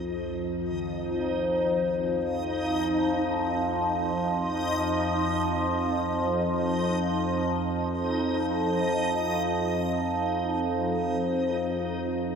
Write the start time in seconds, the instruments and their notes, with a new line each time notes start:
Already playing: kettle gongs C2, synth drone F2 F3, synth texture D#4 D#5
0.72 kettle gongs D#3
2.20 kettle gongs C4
11.49 synth drone F3, synth texture D#4 D#5
11.54 synth drone F2